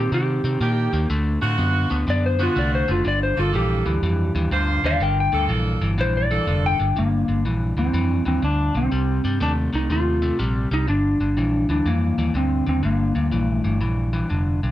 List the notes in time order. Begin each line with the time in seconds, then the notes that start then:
Already playing: D#3 C4 G4
0.12 C3 D#3 C4 G4
0.44 C3 D#3 C4
0.60 A#2 D#3 A#3 D4 D#4 G4
0.93 D#2 D#3 A#3
1.10 D2 D3 A3
1.41 A2 D3 A3 C4 F4 F#4
1.58 F#2 D3 B3
1.90 D2 D3 B3
2.07 F#2 D3 B3 D5
2.26 C5
2.38 D3 B3 C4 F4 F#4
2.43 F4
2.55 C2 D3 A3 D5
2.75 C5
2.88 F#1 D3 A3 F4
3.04 G1 G2 D3 D5
3.23 C5
3.36 G1 G2 D3 A#3 F4 A4
3.53 A#1 G2 E3 G4
3.86 D2 G2 E3
4.02 F2 G2 E3
4.35 D#2 G2 E3
4.51 D2 G2 D3 A#3 F4 C5
4.83 D#2 G2 D3 D5 F5
5.00 G1 G2 D3 A#4 G5
5.20 G5
5.32 D2 G2 D3 A#3 F4 A4
5.49 A#1 G2 E3
5.81 G1 G2 E3
5.98 A#1 G2 E3 C5
6.17 D5
6.29 G2 E3 A#3 F4 A4
6.47 F1 G2 D3
6.66 G5
6.79 G1 G2 D3
6.96 G1 G2 D3 A#3
7.28 G1 G2 D3
7.45 A#1 G2 E3
7.77 D2 G2 E3 C4
7.93 F2 G2 E3
8.25 D#2 G2 E3 C4
8.42 D2 G2 D3 D4
8.75 B1 G2 D3 C4
8.92 C2 C3 G3
9.24 G2 C3 G3
9.40 D#2 C3 A3 D4
9.73 C2 C3 A3 D#4
9.90 D#2 C3 A3 F4
10.22 C3 A3
10.39 A#1 C3 G3
10.71 C2 C3 G3 D#4
10.88 G1 G2 D3 D4
11.20 G1 G2 D3
11.37 A#1 G2 E3
11.69 D2 G2 E3 D4
11.85 F2 G2 E3 A#3
12.18 D#2 G2 E3
12.34 D2 G2 D3 C4
12.67 D#2 G2 D3 C4
12.83 G1 G2 D3 A#3
13.15 D2 G2 D3
13.32 A#1 G2 E3
13.48 A3
13.64 G1 G2 E3
13.81 A#1 G2 E3
14.13 G2 E3
14.30 F1 G2 D3
14.63 B1 G2 D3